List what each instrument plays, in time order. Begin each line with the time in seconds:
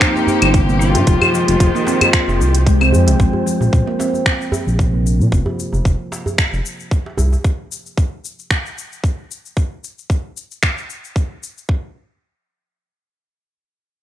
Already playing: string section F3 A#3 G4, synth texture C5
0.01 electric slide guitar D#4, finger snap, kick, closed hi-hat, shaker
0.15 djembe tone, shaker
0.27 djembe bass, shaker
0.42 analog synth bass G1, closed hi-hat, claves, shaker
0.54 handpan C3, kick, closed hi-hat, shaker
0.69 handpan A#3, shaker
0.80 electric slide guitar F4, shaker
0.94 analog synth bass G2, handpan F3, closed hi-hat, djembe tone, shaker
1.07 analog synth bass F1, string section D#3 G#3, handpan F3, kick, closed hi-hat, shaker
1.22 djembe bass, claves, shaker
1.34 handpan F3, shaker
1.48 analog synth bass F1, closed hi-hat, shaker
1.60 analog synth bass F1, kick, closed hi-hat, shaker
1.75 handpan A#3, djembe slap, djembe tone, shaker
1.87 handpan C4, djembe slap, shaker
2.01 closed hi-hat, djembe bass, claves, shaker
2.13 finger snap, kick, closed hi-hat, shaker
2.28 analog synth bass F1, djembe tone, shaker
2.40 analog synth bass C2, shaker
2.54 closed hi-hat, djembe tone, shaker
2.66 handpan G#3, kick, closed hi-hat, shaker
2.80 handpan C4, djembe slap, djembe tone, claves, shaker
2.93 analog synth bass F2, djembe bass, shaker
3.07 analog synth bass C2, handpan F3, closed hi-hat, djembe slap, djembe tone, shaker
3.20 analog synth bass A#1, handpan F3, kick, shaker
3.33 djembe bass
3.46 handpan F3, shaker
3.61 analog synth bass A#1, djembe tone, shaker
3.73 analog synth bass A#1, kick, shaker
3.87 handpan A#3, djembe slap
3.99 handpan C4, djembe slap, shaker
4.14 djembe tone, shaker
4.26 finger snap, kick, shaker
4.41 shaker
4.52 djembe tone, djembe bass, shaker
4.67 analog synth bass A#1, shaker
4.79 handpan C3, kick, shaker
4.93 handpan A#3
5.06 shaker
5.20 analog synth bass A#2, handpan F3, shaker
5.32 analog synth bass F1, kick, shaker
5.46 djembe bass
5.60 shaker
5.72 analog synth bass F1, djembe tone, shaker
5.85 analog synth bass F1, kick, shaker
6.12 djembe slap, shaker
6.26 djembe tone, djembe bass, shaker
6.38 finger snap, kick, shaker
6.53 analog synth bass F1, shaker
6.66 shaker
6.80 shaker
6.91 kick, shaker
7.06 djembe slap
7.17 analog synth bass C2, djembe tone, djembe bass, shaker
7.33 djembe slap, shaker
7.44 kick, shaker
7.72 shaker
7.86 shaker
7.98 kick, shaker
8.25 shaker
8.39 shaker
8.51 finger snap, kick, shaker
8.66 shaker
8.78 shaker
8.93 shaker
9.04 kick, shaker
9.31 shaker
9.46 shaker
9.57 kick, shaker
9.84 shaker
9.99 shaker
10.10 kick, shaker
10.37 shaker
10.51 shaker
10.63 finger snap, kick, shaker
10.78 shaker
10.90 shaker
11.04 shaker
11.16 kick, shaker
11.43 shaker
11.58 shaker
11.69 kick